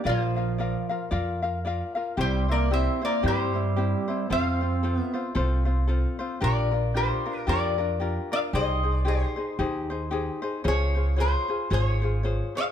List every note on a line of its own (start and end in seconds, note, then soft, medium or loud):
0.04 0.74 A#1 medium
0.04 1.06 F3 medium
0.04 0.36 F4 medium
0.04 0.36 A#4 medium
0.04 1.08 C5 medium
0.04 0.35 D5 medium
0.04 0.35 F5 medium
0.09 1.09 F4 medium
0.36 0.58 F4 soft
0.36 0.59 A#4 soft
0.36 0.58 F5 soft
0.58 0.90 F4 medium
0.58 0.89 A#4 medium
0.58 0.89 D5 medium
0.58 0.88 F5 medium
0.89 1.10 F4 soft
0.89 1.11 A#4 medium
0.89 1.11 F5 soft
1.11 1.80 F2 medium
1.11 1.42 F4 medium
1.11 1.42 A#4 medium
1.11 1.42 D5 medium
1.11 1.41 F5 medium
1.42 1.64 F4 soft
1.42 1.65 A#4 medium
1.42 1.64 F5 medium
1.65 1.96 F4 medium
1.65 1.95 A#4 medium
1.65 1.95 D5 medium
1.65 1.94 F5 medium
1.95 2.17 F4 medium
1.95 2.18 A#4 medium
1.95 2.17 F5 medium
2.17 2.86 C2 medium
2.17 2.47 G3 medium
2.17 2.48 C4 medium
2.17 2.48 E4 medium
2.17 2.48 G4 medium
2.17 2.47 C5 medium
2.17 2.51 C5 medium
2.21 2.48 G4 medium
2.48 2.69 A#3 medium
2.48 2.70 C4 soft
2.48 2.71 E4 soft
2.48 2.70 A#4 medium
2.48 2.70 C5 medium
2.48 2.73 D5 medium
2.71 3.02 C4 medium
2.71 3.00 C4 medium
2.71 3.01 E4 medium
2.71 3.01 G4 medium
2.71 3.00 C5 medium
2.71 3.01 C5 medium
2.71 3.01 E5 medium
3.01 3.22 A#3 medium
3.01 3.22 C4 soft
3.01 3.23 E4 soft
3.01 3.24 A#4 medium
3.01 3.23 C5 soft
3.01 3.23 D5 medium
3.23 3.92 G2 medium
3.23 4.26 G3 medium
3.23 3.54 C4 medium
3.23 3.54 E4 medium
3.23 3.54 G4 medium
3.23 3.53 C5 medium
3.28 4.28 G4 medium
3.28 4.31 C5 medium
3.54 3.76 C4 soft
3.54 3.77 E4 soft
3.54 3.76 C5 soft
3.76 4.08 C4 medium
3.76 4.07 E4 medium
3.76 4.07 G4 medium
3.76 4.07 C5 medium
4.08 4.29 C4 medium
4.08 4.30 E4 medium
4.08 4.29 C5 medium
4.29 4.99 F2 medium
4.29 4.97 C4 medium
4.29 4.61 C4 medium
4.29 4.61 F4 medium
4.29 4.60 A4 medium
4.29 4.60 C5 medium
4.29 5.33 C5 medium
4.29 4.99 F5 medium
4.61 4.82 C4 soft
4.61 4.83 F4 soft
4.61 4.82 C5 soft
4.83 5.14 C4 medium
4.83 5.13 F4 medium
4.83 5.13 A4 medium
4.83 5.12 C5 medium
4.97 5.31 B3 medium
4.97 5.33 E5 medium
5.14 5.34 C4 soft
5.14 5.34 F4 soft
5.14 5.35 C5 medium
5.35 6.04 C2 medium
5.35 5.66 C4 medium
5.35 5.65 F4 medium
5.35 5.66 A4 medium
5.35 5.64 C5 medium
5.65 5.87 C4 soft
5.65 5.87 F4 medium
5.65 5.88 C5 soft
5.87 6.19 C4 medium
5.87 6.19 F4 medium
5.87 6.19 A4 medium
5.87 6.18 C5 medium
6.19 6.41 C4 soft
6.19 6.40 F4 medium
6.19 6.41 C5 medium
6.41 7.10 A#1 medium
6.41 6.72 D4 medium
6.41 6.72 F4 medium
6.41 6.72 G4 medium
6.41 6.70 A#4 medium
6.41 6.92 A#4 medium
6.41 6.97 D5 medium
6.72 6.94 D4 soft
6.72 6.95 F4 soft
6.72 6.94 A#4 medium
6.95 7.25 D4 medium
6.95 7.25 F4 medium
6.95 7.25 G4 medium
6.95 7.45 G4 medium
6.95 7.24 A#4 medium
6.95 7.49 C5 medium
7.26 7.47 D4 soft
7.26 7.47 F4 soft
7.26 7.47 A#4 medium
7.47 8.16 F2 medium
7.47 7.78 D4 medium
7.47 7.78 F4 medium
7.47 7.78 G4 medium
7.47 7.77 A#4 medium
7.47 8.28 A#4 medium
7.47 8.32 D5 medium
7.78 7.99 D4 soft
7.78 8.00 F4 soft
7.78 8.00 A#4 medium
8.00 8.31 D4 medium
8.00 8.31 F4 medium
8.00 8.31 G4 medium
8.00 8.30 A#4 medium
8.32 8.54 D4 soft
8.32 8.54 F4 medium
8.32 8.53 A#4 medium
8.32 8.39 D5 medium
8.32 8.39 F5 medium
8.53 9.22 C2 medium
8.53 8.84 D#4 medium
8.53 8.84 G4 medium
8.53 8.83 G#4 medium
8.53 8.82 C5 medium
8.53 9.04 C5 medium
8.53 8.94 D#5 loud
8.83 9.04 D#4 soft
8.83 9.05 G#4 soft
8.83 9.06 C5 soft
8.94 9.08 D5 loud
9.05 9.37 D#4 medium
9.05 9.36 G4 medium
9.05 9.36 G#4 medium
9.05 10.40 G#4 medium
9.05 9.35 C5 medium
9.05 10.40 C5 medium
9.36 9.58 D#4 soft
9.36 9.58 G#4 soft
9.36 9.58 C5 medium
9.59 10.28 D#2 medium
9.59 9.90 D#4 medium
9.59 9.90 G4 medium
9.59 9.90 G#4 medium
9.59 9.89 C5 medium
9.90 10.10 D#4 medium
9.90 10.11 G#4 medium
9.90 10.12 C5 medium
10.11 10.42 D#4 medium
10.11 10.42 G4 medium
10.11 10.42 G#4 medium
10.11 10.41 C5 medium
10.42 10.64 D#4 soft
10.42 10.63 G#4 medium
10.42 10.64 C5 medium
10.64 11.34 C#2 loud
10.64 10.95 F4 medium
10.64 10.95 G#4 medium
10.64 11.16 G#4 medium
10.64 10.93 C5 medium
10.64 10.95 C#5 medium
10.64 11.21 C#5 medium
10.94 11.16 F4 soft
10.94 11.16 G#4 soft
10.94 11.17 C5 soft
11.16 11.48 F4 medium
11.16 11.48 G#4 medium
11.16 11.68 G#4 medium
11.16 11.47 C5 medium
11.16 11.48 C#5 medium
11.21 11.69 C5 medium
11.48 11.70 F4 soft
11.48 11.70 G#4 soft
11.48 11.70 C5 medium
11.70 12.39 G#1 medium
11.70 12.02 F4 medium
11.70 12.02 G#4 medium
11.70 12.52 G#4 medium
11.70 12.01 C5 medium
11.70 11.85 C5 medium
11.70 12.01 C#5 medium
11.85 12.56 C#5 medium
12.02 12.23 F4 soft
12.02 12.23 G#4 soft
12.02 12.24 C5 medium
12.23 12.55 F4 medium
12.23 12.55 G#4 medium
12.23 12.54 C5 medium
12.23 12.54 C#5 medium
12.55 12.72 F4 soft
12.55 12.72 G#4 soft
12.55 12.72 C5 medium
12.55 12.62 C#5 medium
12.55 12.64 F5 medium